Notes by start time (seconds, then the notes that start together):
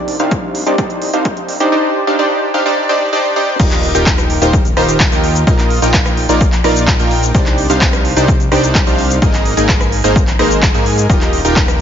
Already playing: C2 D4 D#4 G4 C5 D5
0.08 open hi-hat
0.20 C2 D4 D#4 G4 C5 F5, closed hi-hat
0.31 kick, closed hi-hat
0.55 open hi-hat
0.67 C2 D4 D#4 G4 C5 D5, closed hi-hat
0.78 C2 D4 D#4 G4 C5 D5, kick, closed hi-hat
0.90 closed hi-hat
1.02 open hi-hat
1.13 C2 D4 D#4 G4 C5 F5, closed hi-hat
1.25 kick, closed hi-hat
1.37 closed hi-hat
1.49 open hi-hat
1.60 C2 D4 D#4 G4 C5 D5, closed hi-hat
1.72 D4 D#4 G4 C5 D5
2.07 D4 D#4 G4 C5 F5
2.19 D4 D#4 G4 C5 D5
2.54 D4 D#4 G4 C5 F5
2.66 D4 D#4 G4 C5 D5
2.89 D4 D#4 G4 C5 D5
3.13 D4 D#4 G4 C5 D5
3.36 D4 D#4 G4 C5 D5
3.60 D#1 D#4 F4 G4 A#4 D#5, kick, closed hi-hat, crash, shaker
3.71 clap, closed hi-hat, shaker
3.83 open hi-hat
3.95 D#1 D#4 F4 G4 A#4 G5, closed hi-hat, shaker
4.06 kick, cross-stick, clap, closed hi-hat, shaker
4.18 cross-stick, closed hi-hat, shaker
4.30 open hi-hat
4.42 D#1 D#4 F4 G4 A#4 C5, closed hi-hat, shaker
4.53 kick, closed hi-hat, shaker
4.65 closed hi-hat, shaker
4.77 D#1 D#4 F4 G4 A#4 C5, cross-stick, open hi-hat
4.89 closed hi-hat, shaker
5.00 kick, clap, closed hi-hat, shaker
5.12 D#2 D#4 F4 G4 A#4 G5, closed hi-hat, shaker
5.24 open hi-hat
5.35 closed hi-hat, shaker
5.47 A#1 A#3 D#4 F4 A#4 D#5, kick, closed hi-hat, shaker
5.59 clap, closed hi-hat, shaker
5.70 open hi-hat
5.82 A#1 A#3 D#4 F4 A#4 G5, closed hi-hat, shaker
5.94 kick, cross-stick, clap, closed hi-hat, shaker
6.06 cross-stick, closed hi-hat, shaker
6.17 open hi-hat
6.29 A#1 A#3 D#4 F4 A#4 D5, closed hi-hat, shaker
6.41 kick, closed hi-hat, shaker
6.52 clap, closed hi-hat, shaker
6.64 A#1 A#3 D#4 F4 A#4 D5, cross-stick, open hi-hat
6.76 closed hi-hat, shaker
6.87 kick, clap, closed hi-hat, shaker
6.99 A#1 A#3 D#4 F4 A#4 G5, closed hi-hat, shaker
7.11 open hi-hat
7.23 closed hi-hat, shaker
7.35 C2 D4 D#4 G4 C5 D5, kick, closed hi-hat, shaker
7.46 clap, closed hi-hat, shaker
7.58 open hi-hat
7.70 C2 D4 D#4 G4 C5 F5, closed hi-hat, shaker
7.81 kick, cross-stick, clap, closed hi-hat, shaker
7.93 cross-stick, closed hi-hat, shaker
8.05 open hi-hat
8.17 C2 D4 D#4 G4 C5 D5, closed hi-hat, shaker
8.28 kick, closed hi-hat, shaker
8.40 closed hi-hat, shaker
8.52 C2 D4 D#4 G4 C5 D5, cross-stick, open hi-hat
8.63 closed hi-hat, shaker
8.75 kick, clap, closed hi-hat, shaker
8.87 C2 D4 D#4 G4 C5 F5, closed hi-hat, shaker
8.99 open hi-hat
9.10 closed hi-hat, shaker
9.22 G#1 A#3 D#4 G#4 A#4 D#5, kick, closed hi-hat, shaker
9.34 clap, closed hi-hat, shaker
9.45 open hi-hat
9.57 G#1 A#3 D#4 G#4 A#4 G#5, closed hi-hat, shaker
9.69 kick, cross-stick, clap, closed hi-hat, shaker
9.81 cross-stick, closed hi-hat, shaker
9.92 open hi-hat
10.04 G#1 A#3 D#4 G#4 A#4 C5, closed hi-hat, shaker
10.16 kick, closed hi-hat, shaker
10.27 clap, closed hi-hat, shaker
10.39 G#1 A#3 D#4 G#4 A#4 C5, cross-stick, open hi-hat
10.51 closed hi-hat, shaker
10.62 kick, clap, closed hi-hat, shaker
10.74 G#2 A#3 D#4 G#4 A#4 G#5, closed hi-hat, shaker
10.86 open hi-hat
10.98 closed hi-hat, shaker
11.10 D#1 D#4 F4 G4 A#4 D#5, kick, closed hi-hat, shaker
11.21 clap, closed hi-hat, shaker
11.33 open hi-hat
11.45 D#1 D#4 F4 G4 A#4 G5, closed hi-hat, shaker
11.56 kick, cross-stick, clap, closed hi-hat, shaker
11.68 cross-stick, closed hi-hat, shaker